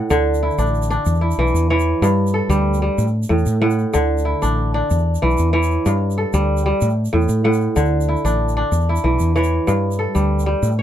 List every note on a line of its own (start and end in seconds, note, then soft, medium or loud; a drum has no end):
0.00 0.15 A2 medium
0.00 0.62 A4 medium
0.00 0.75 F#5 medium
0.10 0.49 D2 medium
0.10 1.11 D3 medium
0.10 shaker medium
0.34 shaker soft
0.43 1.21 E4 medium
0.51 shaker soft
0.58 0.97 A1 loud
0.58 0.90 D4 medium
0.58 shaker medium
0.66 shaker soft
0.74 shaker soft
0.82 shaker medium
0.90 1.76 D4 medium
1.06 1.32 E2 medium
1.06 shaker medium
1.15 shaker soft
1.21 2.78 E4 medium
1.31 shaker medium
1.38 1.51 B1 medium
1.38 1.69 E3 medium
1.47 shaker soft
1.54 1.93 E2 medium
1.54 shaker medium
1.70 2.07 E3 medium
1.70 2.85 C#5 medium
1.79 shaker soft
2.02 2.40 G2 medium
2.02 3.03 G2 medium
2.02 shaker medium
2.27 shaker soft
2.34 3.66 A4 medium
2.49 2.88 D2 loud
2.49 2.81 G3 medium
2.49 shaker medium
2.74 shaker soft
2.82 3.03 G3 medium
2.98 3.24 A2 loud
2.98 shaker medium
3.07 shaker soft
3.23 shaker medium
3.29 3.43 E2 medium
3.29 3.60 A2 medium
3.38 shaker soft
3.46 3.85 A2 medium
3.46 shaker medium
3.62 3.99 A2 medium
3.62 4.58 F#5 medium
3.70 shaker soft
3.79 shaker soft
3.93 4.33 D2 medium
3.93 4.95 D3 medium
3.93 shaker medium
4.18 shaker soft
4.25 5.82 E4 medium
4.42 4.81 A1 medium
4.42 4.74 D4 medium
4.42 shaker medium
4.74 5.59 D4 medium
4.90 5.16 E2 loud
4.90 shaker medium
5.15 shaker medium
5.22 5.35 B1 medium
5.22 5.52 E3 medium
5.31 shaker soft
5.38 5.77 E2 medium
5.38 shaker medium
5.53 5.90 E3 medium
5.53 6.68 C#5 medium
5.63 shaker medium
5.86 6.86 G2 medium
5.86 6.24 G2 loud
5.86 shaker medium
6.11 shaker soft
6.18 7.49 A4 medium
6.33 6.72 D2 loud
6.33 6.65 G3 medium
6.33 shaker medium
6.57 shaker soft
6.66 6.86 G3 medium
6.81 7.07 A2 loud
6.81 shaker medium
7.05 shaker soft
7.13 7.26 E2 medium
7.13 7.44 A2 medium
7.21 shaker soft
7.28 7.67 A2 medium
7.28 shaker medium
7.44 7.81 A2 medium
7.44 8.41 F#5 medium
7.53 shaker medium
7.76 8.15 D2 medium
7.76 8.77 D3 medium
7.76 shaker medium
7.85 shaker soft
8.01 shaker soft
8.09 8.89 E4 medium
8.17 shaker soft
8.25 8.63 A1 loud
8.25 8.56 D4 medium
8.25 shaker medium
8.49 shaker soft
8.57 9.42 D4 medium
8.72 8.97 E2 medium
8.72 shaker medium
8.89 10.46 E4 medium
8.96 shaker medium
9.04 9.17 B1 medium
9.04 9.34 E3 medium
9.19 9.58 E2 medium
9.19 shaker medium
9.36 9.72 E3 medium
9.36 10.50 C#5 medium
9.36 shaker soft
9.44 shaker medium
9.67 10.68 G2 medium
9.67 10.06 G2 medium
9.67 shaker medium
9.91 shaker medium
9.99 10.82 A4 medium
10.15 10.54 D2 medium
10.15 10.45 G3 medium
10.15 shaker medium
10.39 shaker soft
10.46 10.68 G3 medium
10.63 10.82 A2 loud
10.63 shaker medium
10.79 10.82 C#5 medium